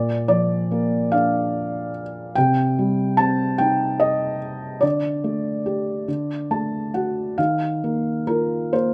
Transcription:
felt piano
Already playing: A#2 D5
0.28 F3 D5
0.71 A#3
1.12 D4 F5
2.35 C3 G5
2.79 G3
3.17 C4 A5
3.58 D#4 G5
4.00 D#5
4.81 D3 D5
5.24 A3
5.66 G4
6.08 D3
6.51 A3 A5
6.94 F#4 F#5
7.38 D#3 F5
7.84 A#3
8.27 F4 A#4
8.73 A#3 C5

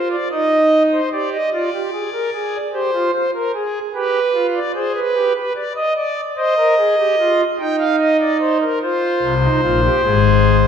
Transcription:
pipe organ
Already playing: F4
0.11 D5
0.31 D#4 D#5
0.92 C5
1.12 G4 D5
1.33 D#5
1.53 F4 D5
1.73 G4
1.93 G#4
2.13 A#4
2.33 G#4
2.73 G4 C5
2.94 F4
3.13 C5
3.34 A#4
3.54 G#4
3.94 G4 B4
4.34 F4
4.55 D5
4.74 G#4 C5
4.95 B4
5.15 G4
5.35 B4
5.56 D5
5.76 D#5
5.96 D5
6.37 C5 D#5
6.57 A#4
6.78 G#4
6.98 G4
7.19 F4
7.59 D#4 G5
7.79 F5
8.00 D#5
8.20 D5
8.40 C5
8.61 A#4
8.82 F4 C5
9.22 C2 C3
9.43 D#4
9.63 A#1 A#2 F4
9.84 G4
10.04 G#1 G#2 G#4

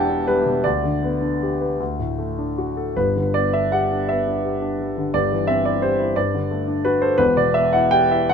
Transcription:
grand piano
Already playing: E1 E2 B2 B3 D4 G4 E5 F#5 G5 A5
0.10 D4
0.28 G3 B4
0.46 B2
0.64 D2 D5
0.83 D3
1.02 B3
1.22 D4
1.42 G4
1.61 B4
1.80 D2
1.99 A2
2.19 A3
2.38 D4
2.58 F#4
2.77 A4
2.96 G1 G2 B4
3.16 D3
3.34 B3 D5
3.53 D4 E5
3.72 G4 F#5
3.91 D4
4.09 B3 E5
4.27 D4
4.44 G4
4.62 D4
4.80 G3
4.97 D3
5.14 G1 G2 D5
5.31 E3
5.47 C4 E5
5.65 E4 D5
5.82 G4 C5
5.99 E4
6.16 G2 D5
6.34 D3
6.51 A3
6.68 D4
6.85 F#4 B4
7.02 A4 C5
7.18 E1 E2 B4
7.37 B2 D5
7.54 B3 E5
7.73 E4 F#5
7.91 G4 G5
8.11 E4 E5
8.29 D2 F#5

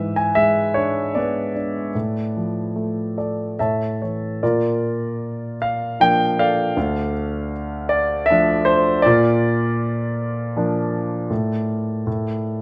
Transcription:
grand piano
Already playing: G#2 B4 E5
0.00 E3
0.16 G#5
0.35 G#3 E5
0.74 D4 C#5
1.15 B3 B4 D5
1.56 D4
1.95 A2
2.37 F3
2.76 A3
3.18 A4 D5
3.59 A2 A4 C#5 E5 A5
4.02 E3 C#5
4.43 A#2 F4 A#4 D5
5.62 F5
6.00 F3 A#3 D4 G5
6.39 A4 D5 F5
6.77 D2
7.89 D5
8.26 E5
8.30 F3 A3 D4
8.65 C5
9.02 A#2 F4 A#4 D5
10.57 F3 A#3 D4
11.30 A2
12.07 A2

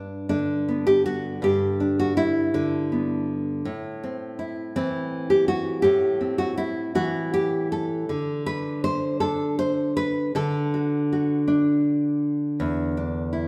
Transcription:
nylon-string guitar
Already playing: G2 G3 D4
0.29 D3 D4
0.68 B3
0.87 G4
1.06 F#4
1.42 G2 G4
1.80 D4
1.99 F#4
2.17 E4
2.54 D3 D4
2.92 B3
3.65 A2
4.04 C4
4.39 E4
4.76 E3 C4
5.30 G4
5.48 F#4
5.82 A2 G4
6.21 C4
6.38 F#4
6.58 E4
6.95 E3 F#4
7.34 G4
7.72 A4
8.09 D3
8.46 B4
8.84 C5
9.20 D4 A4
9.59 C5
9.97 B4
10.35 D3 A4
10.74 F#4
11.13 F#4
11.48 D4
12.60 E2
12.97 D4
13.33 E4

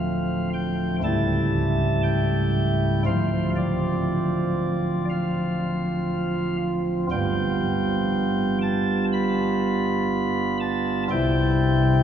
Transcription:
pipe organ
Already playing: D1 D2 F3 A3 C4 F5
0.54 G5
1.03 C#1 C#2 G3 A3 E4 A5
2.03 G5
3.06 D1 D2 F3 C4 F4 F5
3.56 D5
5.09 F5
7.11 G1 G2 G3 B3 F4 G5
8.62 A5
9.12 B5
10.60 A5
11.10 C2 C3 G3 C4 E4 G5

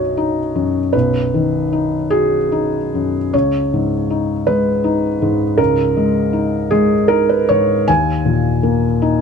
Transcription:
felt piano
Already playing: B1 F#2 D#4 F#4 C#5 D#5
0.17 D#4
0.55 F#2
0.93 B1 B4
1.34 D#3
1.73 D#4
2.10 F#4 G#4
2.52 D#4
2.94 F#2
3.33 C#2 C#5
3.73 G#2
4.10 D#4
4.47 G#3 B4
4.84 D#4
5.22 G#2
5.58 C#2 A#4
5.97 G#3
6.33 D#4
6.71 G#3 G#4
7.08 D#4 A#4
7.29 B4
7.49 G#2 C#5
7.88 D#2 G#5
8.25 A#2
8.63 A#3
9.02 D#4

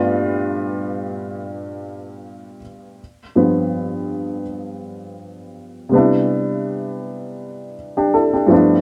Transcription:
grand piano
Already playing: G2 A3 B3 D4 F4
3.36 G2 F3 B3
5.89 C3 G3
5.93 B3 D4 E4
7.97 D4 G4
8.14 E4 A4
8.33 D4 G4
8.47 G2 F3 A3
8.52 B3 D4 E4

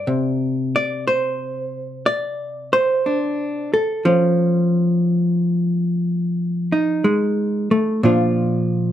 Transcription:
hollow-body jazz guitar
Already playing: D5
0.07 C3
0.76 D5
1.07 C5
2.06 D5
2.73 C5
3.06 D4
3.74 A4
4.05 F3 C#4
6.72 D#4
7.04 G#3
7.71 A3
8.03 A#2 F3 D4 F4

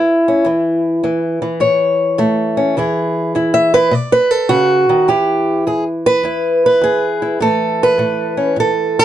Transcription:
steel-string acoustic guitar
Already playing: E2 E4
0.28 C#4
0.45 E2 E3
1.04 E2 E3
1.42 E3
1.60 A2 C#5
2.18 A2 A3
2.57 C#4
2.77 E2 E3 E4 G#4
3.35 E2 E4
3.54 E5
3.74 E4 B4
3.91 B2 D5
4.12 B4
4.31 A4
4.49 C#3 F#4
4.89 D#3
5.08 E2 E3 E4 G4
5.67 E2 G#4
6.06 B4
6.23 E2 E4
6.66 B4
6.81 E2 G#4
7.22 E4
7.40 A2 E3 A3 A4
7.83 B4
7.98 A2 A3
8.37 C#4
8.56 A2 A4
8.99 C#5

